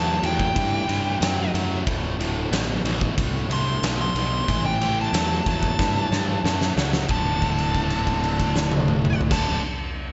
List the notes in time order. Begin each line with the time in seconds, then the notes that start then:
Already playing: E2 A2 F#3 A5
0.22 E2 A2 F#3, ride
0.26 G5
0.40 kick
0.55 G2 A2 E3, kick, ride
0.87 G2 A2 E3, ride
1.20 F#2 A2 F#3, snare, ride
1.53 F#2 A2 F#3, ride
1.86 D1 D2 A2, kick, ride
2.19 D1 D2 A2, ride
2.51 A1 D2 B2, snare, ride
2.84 A1 D2 B2, ride
3.01 kick
3.17 C2 D2 A2, kick, ride
3.49 C2 D2 A2, ride
3.53 C6
3.82 B1 D2 B2, snare, ride
4.01 C6
4.15 B1 D2 B2, ride
4.47 A1 A2 E3, kick, ride
4.66 G5
4.80 A1 A2 E3, ride
5.01 A5
5.13 E2 A2 F#3, snare, ride
5.46 E2 A2 F#3 A5, kick, ride
5.63 kick
5.79 G2 A2 E3, kick, snare
6.11 G2 A2 E3, snare
6.44 F#2 A2 F#3, snare
6.61 snare
6.76 C#2 A2 F#3, snare
6.93 snare
7.08 D1 D2 A2 A5, kick, crash
7.13 D3
7.42 kick, crash
7.58 crash
7.74 kick, crash
7.90 crash
8.07 kick, crash
8.24 crash
8.40 kick, crash
8.56 snare
8.72 high tom
8.88 mid tom
9.05 mid tom
9.21 floor tom
9.29 D1 D2 A2 D3 A5, kick, snare, crash